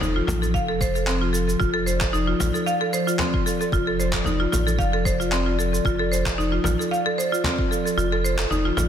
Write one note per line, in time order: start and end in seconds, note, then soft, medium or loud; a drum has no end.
0.00 0.22 F1 loud
0.00 8.88 F3 medium
0.00 1.56 C4 medium
0.00 0.15 D#4 medium
0.00 1.59 A4 medium
0.00 frame drum medium
0.00 cabasa soft
0.16 0.23 F4 medium
0.27 0.56 A1 medium
0.27 0.41 F4 medium
0.27 frame drum medium
0.27 cabasa medium
0.42 0.49 A4 medium
0.42 cabasa soft
0.54 1.56 F1 medium
0.54 0.62 F5 medium
0.54 kick loud
0.54 cabasa soft
0.69 0.80 A4 medium
0.81 0.95 C5 loud
0.81 kick loud
0.81 cabasa medium
0.95 1.06 A4 medium
0.95 cabasa soft
1.07 1.21 C4 medium
1.07 clap medium
1.07 cabasa soft
1.21 1.28 F4 medium
1.33 1.47 A4 medium
1.33 cabasa medium
1.48 1.55 A4 medium
1.48 cabasa soft
1.60 2.09 F1 medium
1.60 1.68 F4 medium
1.60 8.88 D5 medium
1.60 kick loud
1.60 cabasa soft
1.74 1.86 A4 medium
1.86 2.00 C5 medium
1.86 cabasa medium
2.01 2.12 A4 medium
2.01 kick loud
2.01 clap medium
2.01 cabasa soft
2.13 2.34 F1 medium
2.13 2.27 D#4 medium
2.13 cabasa soft
2.27 2.35 F4 medium
2.40 2.51 A1 medium
2.40 2.54 F4 medium
2.40 frame drum medium
2.40 cabasa medium
2.54 2.61 A4 medium
2.54 cabasa soft
2.66 2.75 F5 loud
2.66 cabasa soft
2.81 2.92 A4 medium
2.93 3.07 C5 medium
2.93 cabasa medium
3.07 3.19 F4 medium
3.07 cabasa soft
3.19 3.33 C4 medium
3.19 clap medium
3.19 frame drum medium
3.19 cabasa soft
3.34 3.41 F4 medium
3.34 kick loud
3.46 3.60 A4 medium
3.46 cabasa medium
3.61 3.68 A4 medium
3.61 cabasa soft
3.72 4.21 F1 medium
3.72 3.81 F4 medium
3.72 kick loud
3.72 cabasa soft
3.87 3.99 A4 medium
4.00 4.13 C5 medium
4.00 cabasa medium
4.13 4.25 A4 medium
4.13 kick medium
4.13 clap medium
4.13 cabasa soft
4.24 4.47 F1 medium
4.24 4.39 D#4 medium
4.24 frame drum medium
4.24 cabasa soft
4.40 4.47 F4 medium
4.52 4.80 A1 medium
4.52 4.66 F4 medium
4.52 frame drum medium
4.52 cabasa medium
4.67 4.74 A4 medium
4.67 cabasa soft
4.79 5.80 F1 medium
4.79 4.87 F5 loud
4.79 kick medium
4.79 cabasa soft
4.93 5.05 A4 loud
5.05 5.19 C5 loud
5.05 kick loud
5.05 cabasa medium
5.20 5.31 F4 medium
5.20 cabasa soft
5.32 5.46 C4 medium
5.32 clap medium
5.32 cabasa soft
5.46 5.53 F4 medium
5.59 5.72 A4 medium
5.59 cabasa medium
5.73 5.80 A4 medium
5.73 cabasa soft
5.85 6.33 F1 medium
5.85 5.94 F4 loud
5.85 kick loud
5.85 cabasa soft
5.99 6.11 A4 loud
6.12 6.25 C5 medium
6.12 cabasa medium
6.25 6.37 A4 medium
6.25 kick loud
6.25 clap medium
6.25 cabasa soft
6.38 6.59 F1 loud
6.38 6.52 D#4 loud
6.38 cabasa soft
6.52 6.59 F4 medium
6.64 6.76 A1 medium
6.64 6.78 F4 medium
6.64 frame drum medium
6.64 cabasa medium
6.79 6.86 A4 medium
6.79 cabasa soft
6.91 7.00 F5 medium
6.91 cabasa soft
7.06 7.17 A4 loud
7.18 7.32 C5 loud
7.18 cabasa medium
7.32 7.44 F4 medium
7.32 cabasa soft
7.44 7.58 C4 medium
7.44 clap medium
7.44 frame drum medium
7.44 cabasa soft
7.58 7.66 F4 medium
7.58 kick loud
7.71 7.84 A4 medium
7.71 cabasa medium
7.86 7.92 A4 medium
7.86 cabasa soft
7.97 8.46 F1 loud
7.97 8.06 F4 loud
7.97 cabasa soft
8.12 8.24 A4 loud
8.24 8.38 C5 medium
8.24 cabasa medium
8.39 8.50 A4 medium
8.39 clap medium
8.39 cabasa soft
8.50 8.71 F1 medium
8.50 8.64 D#4 loud
8.50 frame drum medium
8.50 cabasa soft
8.65 8.72 F4 medium
8.77 8.88 A1 medium
8.77 8.88 F4 medium
8.77 frame drum medium
8.77 cabasa medium